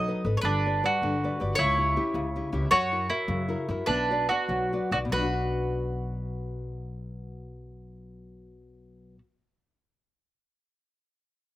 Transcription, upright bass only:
0.00 0.11 B1 medium
0.25 0.37 G#1 medium
0.43 0.81 G1 loud
1.02 1.27 G1 medium
1.41 1.53 G1 medium
1.59 1.95 C#2 loud
2.14 2.40 C#2 medium
2.53 2.65 C#2 loud
2.72 3.09 F#2 loud
3.28 3.54 F#2 loud
3.69 3.81 F#2 loud
3.87 4.27 B1 loud
4.48 4.77 B1 medium
4.91 5.05 B1 medium
5.12 9.18 B1 medium

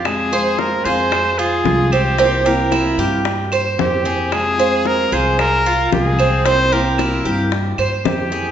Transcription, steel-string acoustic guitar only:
0.05 0.31 C3 medium
0.05 0.31 F3 medium
0.05 0.31 G#3 medium
0.05 0.32 C4 medium
0.05 0.31 F4 medium
0.32 0.85 F3 medium
0.32 0.85 G#3 medium
0.32 0.85 C4 medium
0.32 0.84 F4 medium
0.86 1.11 F3 medium
0.86 1.12 G#3 medium
0.86 1.12 C4 medium
0.86 1.11 F4 medium
1.12 muted steel-string acoustic guitar stroke medium
1.65 2.17 F3 medium
1.65 2.18 G#3 medium
1.65 2.18 C4 medium
1.65 2.18 F4 medium
2.18 2.44 C3 medium
2.18 2.44 E3 medium
2.18 2.44 A#3 medium
2.18 2.44 C4 medium
2.18 2.44 E4 medium
2.45 2.99 E3 medium
2.45 2.98 A#3 medium
2.45 2.98 C4 medium
2.45 2.97 E4 medium
2.98 3.24 E3 medium
2.98 3.25 A#3 medium
2.98 3.25 C4 medium
2.98 3.24 E4 medium
3.25 muted steel-string acoustic guitar stroke medium
3.78 4.31 E3 medium
3.78 4.31 A#3 medium
3.78 4.31 C4 medium
3.78 4.32 E4 medium
4.32 4.57 C3 medium
4.32 4.58 F3 medium
4.32 4.58 G#3 medium
4.32 4.58 C4 medium
4.32 4.57 F4 medium
4.58 5.12 F3 medium
4.58 5.11 G#3 medium
4.58 5.11 C4 medium
4.58 5.10 F4 medium
5.11 5.37 F3 medium
5.11 5.37 G#3 medium
5.11 5.38 C4 medium
5.11 5.37 F4 medium
5.38 muted steel-string acoustic guitar stroke medium
5.91 6.44 F3 medium
5.91 6.44 G#3 medium
5.91 6.45 C4 medium
5.91 6.45 F4 medium
6.45 6.71 C3 medium
6.45 6.71 E3 medium
6.45 6.71 A#3 medium
6.45 6.71 C4 medium
6.45 6.70 E4 medium
6.71 7.25 E3 medium
6.71 7.25 A#3 medium
6.71 7.24 C4 medium
6.71 7.23 E4 medium
7.24 7.51 E3 medium
7.24 7.51 A#3 medium
7.24 7.51 C4 medium
7.24 7.50 E4 medium
7.52 muted steel-string acoustic guitar stroke medium
8.05 8.52 E3 soft
8.05 8.52 A#3 medium
8.05 8.52 C4 medium
8.05 8.52 E4 medium

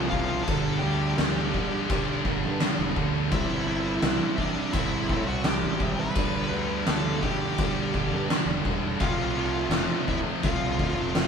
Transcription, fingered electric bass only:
0.00 0.41 C2 medium
0.48 0.79 G1 loud
0.82 1.14 D2 loud
1.19 1.50 D2 medium
2.25 2.45 G1 loud
2.44 2.59 G2 medium
2.79 2.94 E1 loud
2.97 3.28 D2 loud
3.31 3.47 C2 loud
3.50 3.97 G1 loud
4.03 4.19 C2 loud
4.38 4.54 A1 loud
4.73 5.11 G1 loud
5.10 5.25 A2 loud
5.27 5.64 C2 loud
5.63 6.10 G#1 medium
6.16 6.48 G1 loud
6.51 6.83 D2 medium
6.88 7.20 D2 medium
7.94 8.12 G1 medium
8.11 8.27 G2 medium
8.46 8.62 E1 loud
8.65 8.97 E1 loud
9.00 9.15 F1 loud
9.15 9.64 C2 medium
9.69 9.86 F1 medium
10.08 10.24 D1 medium
10.43 10.79 C2 loud
10.79 10.94 D2 loud
10.95 11.28 F1 loud

